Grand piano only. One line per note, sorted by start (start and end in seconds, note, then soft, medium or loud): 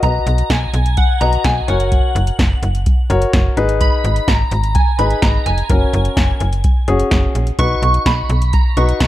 0.03 0.79 F#4 medium
0.03 0.79 B4 medium
0.03 0.79 D#5 medium
1.21 1.67 F#4 medium
1.21 1.68 B4 medium
1.21 1.68 D#5 medium
1.68 2.44 F#4 medium
1.68 2.44 A#4 medium
1.68 2.44 C#5 medium
3.10 3.57 F#4 medium
3.10 3.57 A#4 medium
3.10 3.57 C#5 medium
3.57 4.33 D#4 medium
3.57 4.33 G#4 medium
3.57 4.33 B4 loud
4.99 5.56 D#4 medium
4.99 5.56 G#4 medium
4.99 5.56 B4 medium
5.70 6.46 C#4 medium
5.70 6.46 F#4 medium
5.70 6.46 A#4 medium
6.88 7.45 C#4 medium
6.88 7.45 F#4 medium
6.88 7.45 G#4 loud
7.59 8.35 D#4 medium
7.59 8.35 F#4 medium
7.59 8.35 B4 medium
8.77 9.07 D#4 medium
8.77 9.07 F#4 medium
8.77 9.07 B4 medium